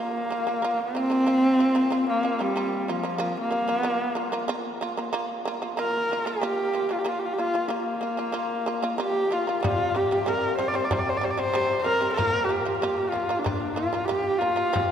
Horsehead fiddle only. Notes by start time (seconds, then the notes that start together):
Already playing: A#3
0.80 C4
2.10 A#3
2.41 G3
2.91 F3
3.40 A#3
5.80 A#4
6.25 G4
6.93 F4
6.99 G4
7.09 F4
7.19 G4
7.25 F4
7.33 G4
7.39 F4
7.68 A#3
9.00 G4
9.33 F4
9.63 F4
9.96 G4
10.28 A#4
10.57 C5
10.68 D5
10.75 C5
10.85 D5
10.93 C5
10.99 D5
11.09 C5
11.17 D5
11.24 C5
11.31 D5
11.38 C5
11.80 A#4 C5
12.14 A#4
12.45 G4
12.78 G4
13.10 F4
13.39 D4
13.74 F4
14.05 G4
14.38 F4